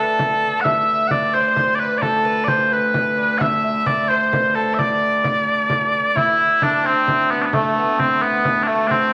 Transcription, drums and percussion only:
0.19 frame drum
0.42 frame drum
0.65 frame drum
0.87 frame drum
1.11 frame drum
1.56 frame drum
2.02 frame drum
2.25 frame drum
2.48 frame drum
2.94 frame drum
3.41 frame drum
3.63 frame drum
3.86 frame drum
4.33 frame drum
4.79 frame drum
5.24 frame drum
5.70 frame drum
5.93 frame drum
6.16 frame drum
6.39 frame drum
6.62 frame drum
7.08 frame drum
7.53 frame drum
7.77 frame drum
7.99 frame drum
8.45 frame drum
8.91 frame drum

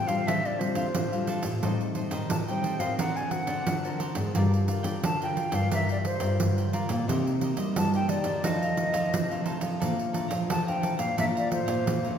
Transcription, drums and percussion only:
0.09 pandeiro
0.28 pandeiro
0.45 pandeiro
0.61 pandeiro
0.75 pandeiro
0.95 pandeiro
1.13 pandeiro
1.27 pandeiro
1.43 pandeiro
1.63 pandeiro
1.81 pandeiro
1.95 pandeiro
2.11 pandeiro
2.30 pandeiro
2.48 pandeiro
2.64 pandeiro
2.80 pandeiro
2.99 pandeiro
3.17 pandeiro
3.31 pandeiro
3.47 pandeiro
3.67 pandeiro
3.85 pandeiro
4.00 pandeiro
4.15 pandeiro
4.35 pandeiro
4.54 pandeiro
4.68 pandeiro
4.84 pandeiro
5.04 pandeiro
5.22 pandeiro
5.37 pandeiro
5.52 pandeiro
5.72 pandeiro
5.89 pandeiro
6.05 pandeiro
6.20 pandeiro
6.40 pandeiro
6.58 pandeiro
6.73 pandeiro
6.89 pandeiro
7.09 pandeiro
7.27 pandeiro
7.41 pandeiro
7.57 pandeiro
7.76 pandeiro
7.94 pandeiro
8.09 pandeiro
8.24 pandeiro
8.44 pandeiro
8.62 pandeiro
8.77 pandeiro
8.94 pandeiro
9.14 pandeiro
9.31 pandeiro
9.46 pandeiro
9.61 pandeiro
9.82 pandeiro
9.99 pandeiro
10.14 pandeiro
10.31 pandeiro
10.50 pandeiro
10.68 pandeiro
10.83 pandeiro
10.99 pandeiro
11.18 pandeiro
11.37 pandeiro
11.52 pandeiro
11.68 pandeiro
11.87 pandeiro
12.04 pandeiro

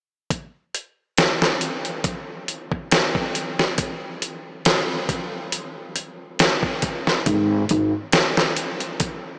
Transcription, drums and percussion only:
0.30 kick, closed hi-hat
0.75 closed hi-hat
1.18 snare, closed hi-hat
1.42 snare
1.61 closed hi-hat
1.85 closed hi-hat
2.04 kick, closed hi-hat
2.48 closed hi-hat
2.72 kick
2.91 snare, closed hi-hat
3.15 kick
3.35 closed hi-hat
3.59 snare
3.78 kick, closed hi-hat
4.22 closed hi-hat
4.65 snare, closed hi-hat
5.09 kick, closed hi-hat
5.52 closed hi-hat
5.96 closed hi-hat
6.39 snare, closed hi-hat
6.63 kick
6.82 kick, closed hi-hat
7.07 snare
7.26 kick, closed hi-hat
7.69 closed hi-hat
8.12 snare, closed hi-hat
8.37 snare
8.57 closed hi-hat
8.80 closed hi-hat
9.00 kick, closed hi-hat

